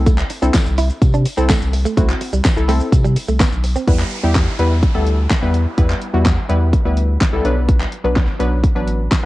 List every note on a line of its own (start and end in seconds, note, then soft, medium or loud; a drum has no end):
0.00 0.23 C2 loud
0.00 0.30 C4 medium
0.00 0.31 E4 medium
0.00 0.31 A4 loud
0.07 0.16 A3 loud
0.07 kick loud
0.07 closed hi-hat medium
0.07 tambourine soft
0.07 shaker medium
0.18 clap medium
0.18 shaker medium
0.30 muted clean electric guitar stroke medium
0.30 open hi-hat medium
0.30 tambourine soft
0.30 shaker medium
0.42 0.51 C2 loud
0.42 0.89 C4 medium
0.42 0.52 D4 medium
0.42 0.89 E4 medium
0.42 0.89 A4 medium
0.42 shaker medium
0.54 kick loud
0.54 snare loud
0.54 clap loud
0.54 closed hi-hat medium
0.54 tambourine medium
0.54 shaker medium
0.66 0.91 C2 loud
0.66 shaker medium
0.78 0.88 E4 medium
0.78 open hi-hat medium
0.78 tambourine soft
0.78 shaker medium
0.90 shaker medium
1.02 1.26 C3 loud
1.02 kick loud
1.02 closed hi-hat medium
1.02 tambourine medium
1.02 shaker medium
1.14 1.24 D4 medium
1.14 shaker medium
1.26 muted clean electric guitar stroke soft
1.26 open hi-hat medium
1.26 tambourine medium
1.26 shaker medium
1.37 1.54 C2 medium
1.37 1.67 C4 medium
1.37 1.47 C4 medium
1.37 1.67 E4 medium
1.37 1.67 A4 loud
1.37 shaker medium
1.50 1.59 A3 medium
1.50 kick loud
1.50 snare loud
1.50 clap loud
1.50 closed hi-hat medium
1.50 tambourine loud
1.50 shaker medium
1.61 1.86 C2 medium
1.61 shaker medium
1.73 muted clean electric guitar stroke medium
1.73 open hi-hat medium
1.73 tambourine medium
1.73 shaker medium
1.85 1.95 A3 medium
1.85 shaker medium
1.97 2.13 C2 loud
1.97 2.07 A3 medium
1.97 2.26 C4 medium
1.97 2.26 E4 medium
1.97 2.26 F#4 loud
1.97 kick loud
1.97 closed hi-hat medium
1.97 tambourine soft
1.97 shaker medium
2.09 clap medium
2.09 shaker soft
2.21 muted clean electric guitar stroke medium
2.21 open hi-hat medium
2.21 shaker medium
2.33 2.41 C2 medium
2.33 2.43 G3 medium
2.33 shaker medium
2.44 kick loud
2.44 snare loud
2.44 clap loud
2.44 closed hi-hat medium
2.44 tambourine medium
2.44 shaker medium
2.56 2.81 C2 loud
2.56 2.62 E4 medium
2.56 2.63 A4 loud
2.56 shaker medium
2.68 2.78 A3 medium
2.68 3.15 C4 medium
2.68 3.15 E4 medium
2.68 3.15 A4 loud
2.68 open hi-hat medium
2.68 tambourine soft
2.68 shaker medium
2.80 shaker medium
2.92 3.17 C3 loud
2.92 kick loud
2.92 closed hi-hat medium
2.92 tambourine medium
2.92 shaker medium
3.04 3.14 G3 medium
3.04 shaker medium
3.16 muted clean electric guitar stroke soft
3.16 open hi-hat medium
3.16 tambourine soft
3.16 shaker medium
3.28 3.44 C2 medium
3.28 3.38 A3 medium
3.28 shaker medium
3.40 3.50 B3 medium
3.40 kick loud
3.40 snare loud
3.40 clap loud
3.40 closed hi-hat medium
3.40 tambourine loud
3.40 shaker medium
3.52 3.76 B1 medium
3.52 shaker medium
3.64 muted clean electric guitar stroke soft
3.64 open hi-hat medium
3.64 tambourine medium
3.64 shaker medium
3.76 3.85 C4 medium
3.76 shaker medium
3.87 4.04 E2 loud
3.87 4.05 G3 medium
3.87 4.05 B3 medium
3.87 4.05 E4 medium
3.87 4.05 B4 medium
3.87 kick loud
3.87 closed hi-hat medium
3.87 downlifter medium
4.00 clap medium
4.11 closed hi-hat soft
4.23 4.48 E2 loud
4.23 4.41 G3 medium
4.23 4.41 B3 medium
4.23 4.41 E4 medium
4.23 4.41 G4 medium
4.35 kick loud
4.35 snare medium
4.35 clap loud
4.35 closed hi-hat medium
4.59 4.83 E2 medium
4.59 4.77 G3 medium
4.59 4.77 B3 medium
4.59 4.77 E4 medium
4.59 4.77 B4 loud
4.59 closed hi-hat medium
4.83 kick loud
4.83 closed hi-hat medium
4.94 5.27 D2 medium
4.94 5.18 G3 medium
4.94 5.18 B3 medium
4.94 5.18 E4 medium
4.94 5.18 A4 medium
5.07 closed hi-hat medium
5.30 kick loud
5.30 snare medium
5.30 clap loud
5.30 closed hi-hat medium
5.42 5.67 E2 medium
5.42 5.60 G3 medium
5.42 5.60 B3 medium
5.42 5.60 E4 medium
5.42 5.60 B4 medium
5.54 closed hi-hat medium
5.78 5.94 E2 loud
5.78 5.95 G3 medium
5.78 5.96 B3 medium
5.78 5.96 E4 medium
5.78 5.96 B4 loud
5.78 kick loud
5.78 closed hi-hat medium
5.90 clap medium
6.02 closed hi-hat medium
6.13 6.38 E2 medium
6.13 6.31 G3 medium
6.13 6.31 B3 medium
6.13 6.31 E4 medium
6.13 6.31 F#4 medium
6.25 kick loud
6.25 snare medium
6.25 clap loud
6.25 closed hi-hat medium
6.49 6.74 E2 loud
6.49 6.67 G3 medium
6.49 6.67 B3 medium
6.49 6.67 E4 medium
6.49 6.67 B4 medium
6.49 closed hi-hat medium
6.73 kick loud
6.73 closed hi-hat medium
6.85 7.17 D2 medium
6.85 7.08 G3 medium
6.85 7.09 B3 medium
6.85 7.09 E4 medium
6.85 7.09 B4 medium
6.97 closed hi-hat medium
7.21 kick loud
7.21 snare medium
7.21 clap loud
7.21 closed hi-hat medium
7.33 7.41 C2 medium
7.33 7.45 G3 medium
7.33 7.43 B3 medium
7.33 7.45 E4 medium
7.33 7.45 A4 loud
7.45 7.85 B1 loud
7.45 7.92 F#3 medium
7.45 7.92 B3 medium
7.45 7.93 D4 medium
7.45 7.93 B4 loud
7.45 closed hi-hat soft
7.69 kick loud
7.69 closed hi-hat medium
7.81 clap medium
7.92 closed hi-hat medium
8.04 8.28 B1 loud
8.04 8.22 F#3 medium
8.04 8.22 B3 medium
8.04 8.22 D4 medium
8.04 8.22 B4 medium
8.16 kick loud
8.16 snare medium
8.16 clap loud
8.16 closed hi-hat medium
8.40 8.64 B1 loud
8.40 8.57 F#3 medium
8.40 8.57 B3 medium
8.40 8.57 D4 medium
8.40 8.58 B4 loud
8.40 closed hi-hat medium
8.64 kick loud
8.64 closed hi-hat medium
8.75 9.08 A1 medium
8.75 8.99 F#3 medium
8.75 8.99 B3 medium
8.75 8.99 D4 medium
8.75 8.99 B4 medium
8.88 closed hi-hat medium
9.11 kick loud
9.11 snare loud
9.11 clap loud
9.11 closed hi-hat medium